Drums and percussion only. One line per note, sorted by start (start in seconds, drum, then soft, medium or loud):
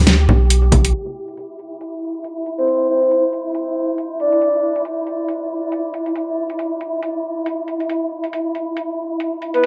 0.07 snare loud
0.07 closed hi-hat medium
0.07 high conga medium
0.29 low conga medium
0.50 closed hi-hat medium
0.72 kick medium
0.72 closed hi-hat medium
0.72 high conga medium
0.85 closed hi-hat medium
0.94 closed hi-hat medium
1.28 closed hi-hat soft
1.37 closed hi-hat medium
1.59 closed hi-hat soft
1.81 closed hi-hat medium
2.24 closed hi-hat medium
2.46 closed hi-hat soft
2.58 closed hi-hat soft
2.68 closed hi-hat medium
3.02 closed hi-hat soft
3.11 closed hi-hat medium
3.33 closed hi-hat soft
3.55 closed hi-hat medium
3.98 closed hi-hat medium
4.20 closed hi-hat soft
4.32 closed hi-hat soft
4.42 closed hi-hat medium
4.76 closed hi-hat soft
4.85 closed hi-hat medium
5.07 closed hi-hat soft
5.28 closed hi-hat medium
5.72 closed hi-hat medium
5.94 closed hi-hat soft
6.06 closed hi-hat soft
6.16 closed hi-hat medium
6.50 closed hi-hat soft
6.59 closed hi-hat medium
6.81 closed hi-hat soft
7.03 closed hi-hat medium
7.46 closed hi-hat medium
7.68 closed hi-hat soft
7.80 closed hi-hat soft
7.90 closed hi-hat medium
8.24 closed hi-hat soft
8.33 closed hi-hat medium
8.55 closed hi-hat soft
8.77 closed hi-hat medium
9.20 closed hi-hat medium
9.42 closed hi-hat soft
9.54 closed hi-hat soft